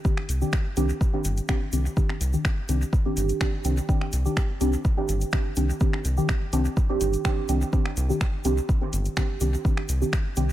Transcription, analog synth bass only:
0, 0, Header, 1, 2, 480
1, 0, Start_track
1, 0, Key_signature, -3, "minor"
1, 0, Tempo, 480000
1, 49, Time_signature, 4, 2, 24, 8
1, 10525, End_track
2, 0, Start_track
2, 0, Title_t, "Analog synth bass"
2, 0, Program_c, 0, 38
2, 288, Note_on_c, 0, 36, 98
2, 442, Note_off_c, 0, 36, 0
2, 768, Note_on_c, 0, 36, 84
2, 922, Note_off_c, 0, 36, 0
2, 1247, Note_on_c, 0, 31, 98
2, 1402, Note_off_c, 0, 31, 0
2, 1726, Note_on_c, 0, 36, 95
2, 1881, Note_off_c, 0, 36, 0
2, 2207, Note_on_c, 0, 36, 102
2, 2362, Note_off_c, 0, 36, 0
2, 2688, Note_on_c, 0, 36, 85
2, 2842, Note_off_c, 0, 36, 0
2, 3169, Note_on_c, 0, 31, 94
2, 3323, Note_off_c, 0, 31, 0
2, 3647, Note_on_c, 0, 36, 101
2, 3802, Note_off_c, 0, 36, 0
2, 4128, Note_on_c, 0, 36, 103
2, 4282, Note_off_c, 0, 36, 0
2, 4608, Note_on_c, 0, 36, 94
2, 4762, Note_off_c, 0, 36, 0
2, 5088, Note_on_c, 0, 31, 97
2, 5242, Note_off_c, 0, 31, 0
2, 5568, Note_on_c, 0, 36, 95
2, 5722, Note_off_c, 0, 36, 0
2, 6047, Note_on_c, 0, 36, 96
2, 6202, Note_off_c, 0, 36, 0
2, 6526, Note_on_c, 0, 36, 86
2, 6682, Note_off_c, 0, 36, 0
2, 7008, Note_on_c, 0, 31, 93
2, 7162, Note_off_c, 0, 31, 0
2, 7489, Note_on_c, 0, 36, 91
2, 7643, Note_off_c, 0, 36, 0
2, 7969, Note_on_c, 0, 36, 99
2, 8123, Note_off_c, 0, 36, 0
2, 8448, Note_on_c, 0, 36, 86
2, 8602, Note_off_c, 0, 36, 0
2, 8929, Note_on_c, 0, 31, 94
2, 9083, Note_off_c, 0, 31, 0
2, 9408, Note_on_c, 0, 36, 94
2, 9562, Note_off_c, 0, 36, 0
2, 9889, Note_on_c, 0, 36, 98
2, 10043, Note_off_c, 0, 36, 0
2, 10368, Note_on_c, 0, 36, 85
2, 10522, Note_off_c, 0, 36, 0
2, 10525, End_track
0, 0, End_of_file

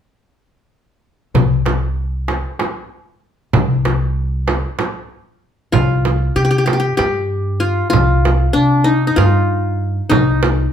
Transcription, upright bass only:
0, 0, Header, 1, 2, 480
1, 0, Start_track
1, 0, Tempo, 626959
1, 1024, Time_signature, 7, 3, 24, 8
1, 8214, End_track
2, 0, Start_track
2, 0, Title_t, "Upright bass"
2, 0, Program_c, 0, 32
2, 1029, Note_on_c, 0, 36, 66
2, 1861, Note_off_c, 0, 36, 0
2, 2706, Note_on_c, 0, 36, 80
2, 3540, Note_off_c, 0, 36, 0
2, 4389, Note_on_c, 0, 36, 84
2, 4804, Note_off_c, 0, 36, 0
2, 4867, Note_on_c, 0, 48, 79
2, 5283, Note_off_c, 0, 48, 0
2, 5350, Note_on_c, 0, 43, 68
2, 5972, Note_off_c, 0, 43, 0
2, 6066, Note_on_c, 0, 36, 89
2, 6481, Note_off_c, 0, 36, 0
2, 6547, Note_on_c, 0, 48, 78
2, 6962, Note_off_c, 0, 48, 0
2, 7021, Note_on_c, 0, 43, 76
2, 7646, Note_off_c, 0, 43, 0
2, 7738, Note_on_c, 0, 36, 84
2, 8156, Note_off_c, 0, 36, 0
2, 8214, End_track
0, 0, End_of_file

